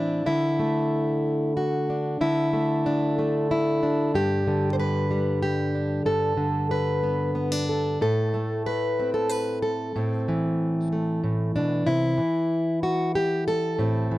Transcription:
Already playing: A2 E3 C4 D4 E4
0.26 D3 E4
0.59 A3
1.57 F#4
1.90 D4
2.21 D3 E4
2.53 A3
2.86 D4
3.19 A3
3.51 E4
3.83 D4
4.14 G2 G4
4.47 D3
4.73 C5
4.79 B4
5.11 G3
5.43 G4
5.75 D4
6.06 G2 A4
6.37 D3
6.71 B4
7.03 B3
7.35 B3
7.52 D4
7.69 A4
8.01 A2 A4
8.34 A3
8.66 B4
8.99 C4
9.14 A4
9.29 B4
9.62 A4
9.96 A2 C4
10.28 E3
10.92 A3
11.24 A2
11.56 B2 D4
11.87 C3 E4
12.18 E3
12.83 F#4
13.15 G4
13.48 A4
13.79 A2 C4
14.11 E3

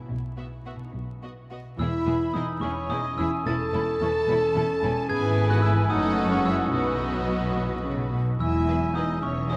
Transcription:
Already playing: B2 B3
0.01 E4
0.05 B1 B2 F#4
0.37 B3 F#4 E5
0.66 B3 F#4 E5
0.76 B2
0.80 B3
0.85 D#4
0.89 B2 F#4
0.94 B1
1.23 B3 F#4 D#5
1.50 B3 F#4 D#5
1.78 E1 E2 E3 B3 E4 G#4 E5 B5 E6
2.06 E1 E2 E3 B3 E4 G#4
2.33 E1 E2 E3 B3 D#4 E4 G#4 D#5 D#6
2.60 E1 E2 E3 C#4 E4 G#4 C#5 G#5 C#6
2.89 E1 E2 E3 C#4 D#4 E4 G#4 D#5 D#6
3.18 E1 E2 E3 C#4 E4 G#4 E5 E6
3.45 E1 E2 E3 C#4 E4 A4 A5 A6
3.49 A5
3.73 E1 E2 E3 C#4 E4 A4 B5
4.00 E1 E2 E3 C#4 E4 A4 C#6
4.27 E1 E2 E3 C#4 E4 A4 B5
4.54 E1 E2 E3 C#4 E4 A4 A5
4.82 E1 E2 E3 C#4 E4 A4 G#5
5.09 G#1 G#2 E3 B3 E4 G#4 B4 G#5 G#6
5.36 B3
5.49 F#4 F#5 F#6
5.62 E4 B4 E5 E6
5.90 F#1 F#2 A3 C#4 D#4 F#4 A4 D#5 F#5 D#6
6.18 C#4
6.31 G#3 C#4 C#5 C#6
6.44 E4 F#4 A4 E5 E6
6.71 B1 B2 F#3 B3 D#4 F#4 B4 D#5 D#6
7.00 F#4
7.27 F#3
7.55 B2 B3
7.83 C#3 F#3
8.11 B2 B3
8.39 E1 E2 E3 E4 E5 G#5 E6
8.66 E3 B3 E4 G#4 B4
8.93 E3 B3 D#4 E4 G#4 B4 D#5 D#6
9.21 E1 E2 E3 C#4 C#5 E5 C#6
9.49 E3 D#4 E4 G#4 C#5 D#5 D#6

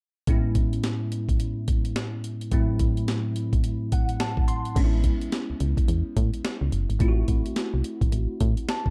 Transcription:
0.27 A2 G#3 B3 C#4 E4, kick, closed hi-hat
0.55 kick, closed hi-hat
0.73 closed hi-hat
0.83 snare, closed hi-hat
1.12 closed hi-hat
1.29 kick, closed hi-hat
1.40 closed hi-hat
1.68 kick, closed hi-hat
1.85 closed hi-hat
1.96 snare, closed hi-hat
2.24 closed hi-hat
2.41 closed hi-hat
2.51 A2 F#3 A3 C4 E4, kick, closed hi-hat
2.79 kick, closed hi-hat
2.97 closed hi-hat
3.08 snare, closed hi-hat
3.36 closed hi-hat
3.53 kick, closed hi-hat
3.64 closed hi-hat
3.92 F#5, kick, closed hi-hat
4.09 closed hi-hat
4.20 A5, snare, closed hi-hat
4.37 kick
4.48 C6, closed hi-hat
4.65 closed hi-hat
4.75 A1 G#3 B3 C#4 D4, kick, closed hi-hat, crash
4.84 E4
5.04 kick, closed hi-hat
5.21 closed hi-hat
5.32 snare, closed hi-hat
5.50 C#2
5.60 C#2, closed hi-hat
5.77 kick, closed hi-hat
5.88 E2, closed hi-hat
6.17 A2, kick, closed hi-hat
6.34 closed hi-hat
6.45 snare, closed hi-hat
6.61 C#2
6.72 F#1, closed hi-hat
6.90 G#1, closed hi-hat
6.99 A1 A3 C4 E4 F4, kick, closed hi-hat
7.08 F#4
7.28 A1, kick, closed hi-hat
7.46 closed hi-hat
7.56 snare, closed hi-hat
7.74 C2
7.84 closed hi-hat
8.01 A1, kick, closed hi-hat
8.12 A1, closed hi-hat
8.40 A2, kick, closed hi-hat
8.57 closed hi-hat
8.69 A5, snare, closed hi-hat
8.86 kick

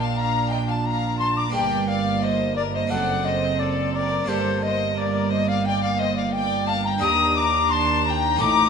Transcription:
Already playing: A#1 A#2 A#3 D4 F4
0.00 F5 A5
0.17 F5 A#5
0.50 D#5 G5
0.68 F5 A5
0.85 F5 A#5
1.19 A5 C6
1.37 A#5 D6
1.50 A#3 D4 G4 G5
1.54 G1 G2 A#3 D5 G5
1.88 D5 F5
2.23 C5 D#5
2.56 A#4 D5
2.74 C5 D#5
2.87 C4 D4 A4 F#5
2.92 F#1 F#2 C4 D5 F#5
3.25 C5 D#5
3.60 A4 D5
3.94 A#4 D5
4.24 A#3 D4 G4 C5
4.29 G1 G2 A#3 A4 C5
4.63 C5 D#5
4.96 A#4 D5
5.31 C5 D#5
5.48 D5 F5
5.66 D5 G5
5.83 D5 F5
5.99 C5 D#5
6.16 D5 F5
6.33 D5 G5
6.67 F5 A5
6.84 G5 A#5
6.98 A#3 D4 G4 D#6
7.02 D#2 D4 A#5 D#6
7.36 A#5 D6
7.70 A5 C6
8.05 G5 A#5
8.36 C4 D#4 A4 D6
8.40 A1 A2 D#4 A#5 D6

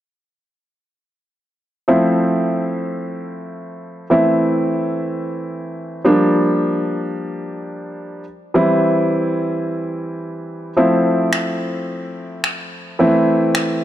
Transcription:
1.88 F3 A3 C4 E4
4.10 E3 A3 C4 E4
6.05 F3 G3 A#3 D4
8.54 E3 G3 C4 E4
10.77 F3 A3 C4 E4
11.33 finger snap
12.44 finger snap
12.99 E3 A3 C4 E4
13.55 finger snap

